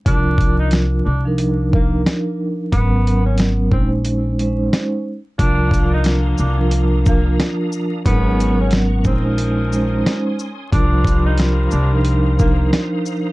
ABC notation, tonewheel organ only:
X:1
M:4/4
L:1/8
Q:"Swing 16ths" 1/4=90
K:Bbdor
V:1 name="Tonewheel organ"
z8 | z8 | [=Dfbe']8 | [_C_gbd']3 [Da=c'e']4- [Dac'e'] |
[cfbe']8 |]